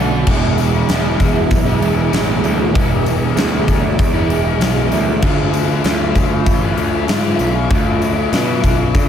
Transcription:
Already playing: picked electric bass B1, overdriven electric guitar D3 A3 D4 F#4, string machine F#4 D5 C#6
0.11 overdriven electric guitar A3 D4 F#4, muted overdriven electric guitar stroke
0.27 picked electric bass E1, overdriven electric guitar E2 B2 E3 G#3 D4 E4, string machine G#4 E5 D6, kick, crash, tambourine
0.58 open hi-hat, tambourine
0.73 overdriven electric guitar E3 G#3 D4 E4
0.88 picked electric bass E1, overdriven electric guitar E2 B2 E3 G#3 D4 E4, snare, open hi-hat, tambourine
1.04 overdriven electric guitar E3 G#3 D4 E4
1.20 picked electric bass E1, overdriven electric guitar E3 G#3 D4 E4, muted overdriven electric guitar stroke, kick, open hi-hat, tambourine
1.34 overdriven electric guitar E3 G#3 D4 E4, muted overdriven electric guitar stroke
1.51 picked electric bass B1, kick, open hi-hat, tambourine
1.66 overdriven electric guitar E3 G#3 D4 E4
1.82 picked electric bass E1, overdriven electric guitar E3 G#3 D4 E4, open hi-hat
1.98 overdriven electric guitar E3 G#3 D4 E4
2.12 picked electric bass A1, overdriven electric guitar E2 B2 E3 G#3 D4 E4, snare, open hi-hat, tambourine
2.27 overdriven electric guitar E3 G#3 D4 E4
2.43 picked electric bass D2, overdriven electric guitar E3 G#3 D4, open hi-hat, tambourine
2.48 overdriven electric guitar E4
2.57 overdriven electric guitar E3 G#3 D4 E4
2.61 muted overdriven electric guitar stroke
2.73 picked electric bass E1, overdriven electric guitar E2 B2 E3 G#3 D4 E4, kick, open hi-hat, tambourine
2.77 overdriven electric guitar G#3 D4 E4
3.06 open hi-hat, tambourine
3.22 overdriven electric guitar E3 G#3 D4 E4
3.36 picked electric bass D2, overdriven electric guitar E2 B2 E3 G#3 D4 E4, snare, open hi-hat, tambourine
3.51 overdriven electric guitar E3 G#3 D4 E4
3.67 picked electric bass D2, overdriven electric guitar E3 G#3 D4 E4, muted overdriven electric guitar stroke, kick, open hi-hat, tambourine
3.82 overdriven electric guitar E3 G#3 D4 E4, muted overdriven electric guitar stroke
3.99 picked electric bass E2, kick, open hi-hat, tambourine
4.14 overdriven electric guitar E3 G#3 D4 E4
4.29 picked electric bass E1, overdriven electric guitar E3 G#3 D4 E4, open hi-hat
4.45 overdriven electric guitar E3 G#3 D4 E4
4.60 picked electric bass B1, overdriven electric guitar E2 B2 E3 G#3 D4 E4, snare, open hi-hat, tambourine
4.75 overdriven electric guitar E3 G#3 D4 E4
4.91 picked electric bass D2, overdriven electric guitar E3 G#3 D4 E4, open hi-hat, tambourine
5.07 overdriven electric guitar E3 G#3 D4 E4, muted overdriven electric guitar stroke
5.22 picked electric bass D2, overdriven electric guitar D3 A3 D4 F4, string machine F4 D6, kick, crash, tambourine
5.53 open hi-hat, tambourine
5.69 overdriven electric guitar A3 D4 F4
5.84 picked electric bass D2, overdriven electric guitar D3 A3 D4 F4, snare, open hi-hat, tambourine
5.99 overdriven electric guitar A3 D4 F4
6.14 picked electric bass D2, overdriven electric guitar D3 A3 D4 F4, muted overdriven electric guitar stroke, kick, open hi-hat, tambourine
6.30 overdriven electric guitar A3 D4 F4, muted overdriven electric guitar stroke
6.46 picked electric bass A1, kick, open hi-hat, tambourine
6.61 overdriven electric guitar A3 D4 F4
6.77 picked electric bass D2, overdriven electric guitar D3 A3 D4 F4, open hi-hat
6.93 overdriven electric guitar A3 D4 F4
7.08 picked electric bass G#2, overdriven electric guitar D3 A3 D4 F4, snare, open hi-hat, tambourine
7.22 overdriven electric guitar A3 D4 F4
7.39 picked electric bass B1, overdriven electric guitar D3 A3 D4 F4, open hi-hat, tambourine
7.54 overdriven electric guitar A3 D4 F4, muted overdriven electric guitar stroke
7.70 picked electric bass D2, overdriven electric guitar D3 A3 D4 F4, kick, open hi-hat, tambourine
8.02 open hi-hat, tambourine
8.16 overdriven electric guitar A3 D4 F4
8.31 picked electric bass B2, overdriven electric guitar D3 A3 D4 F4, snare, open hi-hat, tambourine
8.47 overdriven electric guitar D4 F4
8.63 picked electric bass B1, overdriven electric guitar D3 A3 D4 F4, muted overdriven electric guitar stroke, kick, open hi-hat, tambourine
8.79 overdriven electric guitar A3 D4 F4, muted overdriven electric guitar stroke
8.95 picked electric bass D3, kick, open hi-hat, tambourine

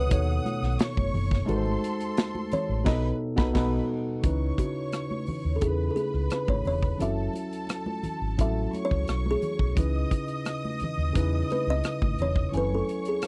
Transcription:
Already playing: tine electric piano B2 D#3 B3 A4 C#5, kalimba B4, string section F#5 D#6
0.09 fingered electric bass D#2, tine electric piano B2 B3 D#4 A4 C#5, kick, closed hi-hat, muted conga
0.46 closed hi-hat, muted conga, high conga
0.62 fingered electric bass B1, snare
0.79 string section C#5 C#6, snare, closed hi-hat
0.97 fingered electric bass F#1, kick, high conga
1.14 fingered electric bass F#1, open hi-hat, muted conga, low conga
1.31 kick, snare
1.46 fingered electric bass G#1, tine electric piano G#3 D#4 F#4 A4 B4, string section A4 C6, closed hi-hat, muted conga, low conga
1.56 tine electric piano C5
1.66 high conga
1.84 closed hi-hat
2.00 closed hi-hat
2.17 snare, closed hi-hat, muted conga
2.35 high conga
2.52 kalimba C#5, muted fingered electric bass stroke, closed hi-hat, muted conga, low conga
2.69 fingered electric bass A1
2.84 fingered electric bass B1, tine electric piano B2 B3 D#4 A4, string section B4 B5, kalimba D#5, kick, snare, crash
3.36 fingered electric bass B1, tine electric piano B2 B3 D#4 A4, string section B4 B5, kick, snare
3.53 fingered electric bass B1, tine electric piano B2 B3 D#4 A4, string section B4 B5, kick, snare, crash
4.22 fingered electric bass C#2, tine electric piano C#3 C#4 D#4 E4 B4, string section C#5 C#6, kick, closed hi-hat, muted conga, low conga
4.58 kalimba F#4, kick, closed hi-hat, muted conga
4.92 cross-stick, closed hi-hat, muted conga
5.11 high conga
5.27 muted fingered electric bass stroke, open hi-hat, muted conga, low conga
5.45 fingered electric bass D#2
5.56 tine electric piano C#3, kalimba A4
5.61 fingered electric bass E2, tine electric piano C#4 D#4 E4 A4, kalimba G#4, string section B4 B5, kick, closed hi-hat, muted conga
5.70 tine electric piano B4
5.91 kalimba A4
5.96 kalimba G#4, closed hi-hat, muted conga, high conga
6.14 fingered electric bass C#2, cross-stick
6.30 kalimba B4, cross-stick, closed hi-hat, muted conga
6.48 fingered electric bass G#1, kalimba C#5, kick, high conga
6.65 fingered electric bass E1, kalimba C#5, open hi-hat, muted conga, low conga
6.83 kick, cross-stick
6.98 fingered electric bass F#1, tine electric piano F#3 C#4 E4 F#4 A4, string section A4 A5, closed hi-hat, low conga
7.02 kalimba E5
7.33 closed hi-hat, muted conga
7.53 closed hi-hat
7.67 cross-stick, closed hi-hat, muted conga
7.86 high conga
8.03 muted fingered electric bass stroke, closed hi-hat, muted conga, low conga
8.21 fingered electric bass G#1
8.37 fingered electric bass A1, tine electric piano F#3 C#4 E4 F#4 A4, kalimba E5, kick, closed hi-hat, muted conga
8.72 string section C#5 C#6, closed hi-hat, muted conga, high conga
8.85 kalimba C#5
8.91 fingered electric bass C#2, kick, cross-stick
9.08 fingered electric bass B1, cross-stick, closed hi-hat, muted conga
9.26 high conga
9.31 kalimba G#4
9.42 closed hi-hat, low conga
9.59 fingered electric bass B1, kick
9.75 fingered electric bass C#2, tine electric piano C#3 C#4 D#4 E4, string section D#5 D#6, kick, closed hi-hat, muted conga, low conga
9.79 tine electric piano B4
10.11 kick, closed hi-hat, muted conga
10.28 closed hi-hat
10.45 cross-stick, closed hi-hat, muted conga
10.65 high conga
10.80 muted fingered electric bass stroke, closed hi-hat, muted conga, low conga
10.98 fingered electric bass D#2
11.13 fingered electric bass E2, tine electric piano C#3 C#4 D#4 E4 B4, kick, closed hi-hat
11.18 muted conga
11.50 kalimba B4, closed hi-hat, high conga
11.67 fingered electric bass C#2, kalimba D#5
11.84 cross-stick, closed hi-hat, muted conga
12.02 fingered electric bass G#1, kick, high conga
12.18 fingered electric bass E1, kalimba C#5, closed hi-hat, low conga
12.36 kick, cross-stick
12.52 fingered electric bass F#1, tine electric piano F#3 C#4 E4 A4 G#5, string section C#5 C#6, closed hi-hat, low conga
12.57 kalimba B4
12.73 kalimba A4, high conga
12.89 closed hi-hat
13.05 kalimba G#4, closed hi-hat
13.22 cross-stick, closed hi-hat, muted conga

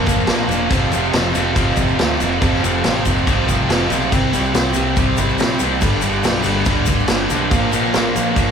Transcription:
Already playing: distorted electric guitar A#2 F3 A#3, tonewheel organ C4 F4 A#4
0.06 picked electric bass F1, overdriven electric guitar A#2 F3 A#3, kick, crash, shaker
0.19 shaker
0.27 picked electric bass A#1, overdriven electric guitar A#2 F3 A#3, snare, crash, shaker
0.49 picked electric bass E1, overdriven electric guitar A#2 F3 A#3, crash, shaker
0.70 picked electric bass F1, overdriven electric guitar F2 C3 F3, tonewheel organ C4 F4 A4, kick, crash, shaker
0.92 picked electric bass F1, overdriven electric guitar F2 C3 F3, crash, shaker
1.13 picked electric bass F1, overdriven electric guitar F2 C3 F3, snare, crash, shaker
1.35 picked electric bass F1, overdriven electric guitar F2 C3 F3, crash, shaker
1.56 picked electric bass F1, overdriven electric guitar F2 C3 F3, kick, crash, shaker
1.76 picked electric bass F1, overdriven electric guitar F2 C3 F3, kick, crash, shaker
1.88 shaker
1.99 picked electric bass D2, overdriven electric guitar F2 C3 F3, snare, crash, shaker
2.20 picked electric bass F1, overdriven electric guitar F2 C3 F3, crash, shaker
2.41 picked electric bass F1, overdriven electric guitar F2 C3 F3, kick, crash, shaker
2.54 snare
2.62 picked electric bass F1, overdriven electric guitar F2 C3 F3, crash, shaker
2.84 picked electric bass A1, overdriven electric guitar F2 C3 F3, snare, crash, shaker
3.05 picked electric bass F1, overdriven electric guitar F2 C3 F3, kick, crash, shaker
3.26 picked electric bass C2, overdriven electric guitar F2 C3 F3, kick, crash, shaker
3.47 picked electric bass C2, overdriven electric guitar F2 C3 F3, kick, crash, shaker
3.69 picked electric bass F1, overdriven electric guitar F2 C3 F3, snare, crash, shaker
3.90 picked electric bass B1, overdriven electric guitar F2 C3 F3, crash, shaker
4.12 picked electric bass C2, overdriven electric guitar C3 G3 C4, tonewheel organ C4 E4 G4, kick, crash, shaker
4.33 picked electric bass C2, overdriven electric guitar C3 G3 C4, snare, crash, shaker
4.44 shaker
4.54 picked electric bass C2, overdriven electric guitar C3 G3 C4, snare, crash, shaker
4.74 picked electric bass C2, overdriven electric guitar C3 G3 C4, crash, shaker
4.96 picked electric bass C2, overdriven electric guitar C3 G3 C4, kick, crash, shaker
5.17 picked electric bass C2, overdriven electric guitar C3 G3 C4, kick, crash, shaker
5.38 picked electric bass A#1, overdriven electric guitar C3 G3 C4, snare, crash, shaker
5.59 picked electric bass C2, overdriven electric guitar C3 G3 C4, crash, shaker
5.81 picked electric bass G1, overdriven electric guitar G2 D3 G3, tonewheel organ B3 D4 G4, kick, crash, shaker
6.01 picked electric bass G1, overdriven electric guitar G2 D3 G3, crash, shaker
6.23 picked electric bass B1, overdriven electric guitar G2 D3 G3, snare, crash, shaker
6.43 picked electric bass G1, overdriven electric guitar G2 D3 G3, crash, shaker
6.65 picked electric bass D1, overdriven electric guitar G2 D3 G3, kick, crash, shaker
6.86 picked electric bass D1, overdriven electric guitar G2 D3 G3, kick, crash, shaker
6.99 shaker
7.08 picked electric bass G1, overdriven electric guitar G2 D3 G3, snare, crash, shaker
7.30 picked electric bass B1, overdriven electric guitar G2 D3 G3, crash, shaker
7.51 picked electric bass A#1, overdriven electric guitar A#2 F3 A#3, tonewheel organ C4 F4 A#4, kick, crash, shaker
7.72 picked electric bass A#1, overdriven electric guitar A#2 F3 A#3, crash, shaker
7.94 picked electric bass A#1, overdriven electric guitar A#2 F3 A#3, snare, crash, shaker
8.15 picked electric bass A#1, overdriven electric guitar A#2 F3 A#3, crash, shaker
8.36 picked electric bass A#1, overdriven electric guitar A#2 F3 A#3, kick, crash, shaker

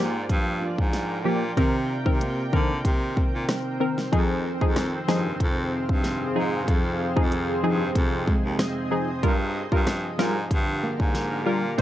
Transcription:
Already playing: baritone saxophone G#2, synth stab F3 A#3 G4, nylon-string guitar A#3, ambient pad F4 A#4 D5 G5
0.29 baritone saxophone G2, nylon-string guitar F3, kick, closed hi-hat
0.61 nylon-string guitar D4
0.78 baritone saxophone G#2, kick
0.93 snare, closed hi-hat
1.25 baritone saxophone A#2, synth stab F3 A#3 G4
1.57 nylon-string guitar C3, baritone saxophone C3, synth stab D#3 C4 A#4, ambient pad C4 C5, kick, closed hi-hat
2.06 baritone saxophone C3, synth stab D#3 C4 A#4, kick
2.21 nylon-string guitar A#3, closed hi-hat
2.53 baritone saxophone D3, synth stab D#3 C4 A#4, kick
2.85 baritone saxophone C3, nylon-string guitar D#3, kick, closed hi-hat
3.17 nylon-string guitar C4, kick
3.34 baritone saxophone A#2
3.49 cross-stick, snare, closed hi-hat
3.80 synth stab D#3 C4 A#4
3.98 snare
4.12 nylon-string guitar F2, baritone saxophone F2, synth stab F3 D#4 G#4, ambient pad G#4 F5, kick, closed hi-hat
4.61 baritone saxophone F2, synth stab F3 D#4 G#4, kick
4.76 nylon-string guitar D#3, cross-stick, snare, closed hi-hat
5.08 baritone saxophone G2, synth stab F3 D#4 G#4, cross-stick, snare
5.40 baritone saxophone F2, nylon-string guitar C3, kick, closed hi-hat
5.89 baritone saxophone G2, kick
6.04 snare, closed hi-hat
6.36 baritone saxophone G#2, synth stab F3 D#4 G#4
6.68 nylon-string guitar F2, baritone saxophone F2, ambient pad D#5, kick, closed hi-hat
7.16 baritone saxophone F2, synth stab F3 D#4 G#4, kick
7.32 nylon-string guitar D#3, closed hi-hat
7.63 baritone saxophone G2, synth stab F3 D#4 G#4
7.95 baritone saxophone F2, nylon-string guitar C3, kick, closed hi-hat
8.27 nylon-string guitar G#3, kick
8.44 baritone saxophone D#2
8.59 cross-stick, snare, closed hi-hat
8.91 synth stab F3 D#4 G#4
9.23 baritone saxophone G2, synth stab G3 F4 A#4, ambient pad D4 G4 A#4 F5, kick, closed hi-hat
9.72 baritone saxophone G2, synth stab G3 F4 A#4, kick
9.87 nylon-string guitar F3, cross-stick, snare, closed hi-hat
10.19 baritone saxophone G#2, synth stab G3 F4 A#4, cross-stick, snare
10.51 baritone saxophone G2, nylon-string guitar D3, kick, closed hi-hat
10.83 nylon-string guitar A#3
11.00 baritone saxophone G#2, kick
11.15 snare, closed hi-hat
11.46 baritone saxophone A#2, synth stab G3 F4 A#4
11.78 baritone saxophone C3, nylon-string guitar C3, synth stab A#3 D#4 C5, kick, closed hi-hat

